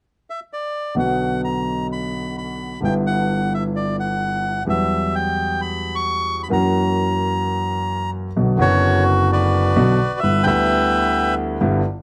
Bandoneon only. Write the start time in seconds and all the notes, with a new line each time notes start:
0.30 E5
0.53 D5
0.99 F#5
1.44 A#5
1.92 B5
2.38 B5
2.84 G5
3.07 F#5
3.54 E5
3.76 D5
4.00 F#5
4.70 E5
5.15 G5
5.61 B5
5.95 C#6
6.43 B5
6.53 A#5
8.61 F#4 C#5
9.33 F#4 B4 D5
10.20 B4 E5
10.43 B4 E5 G5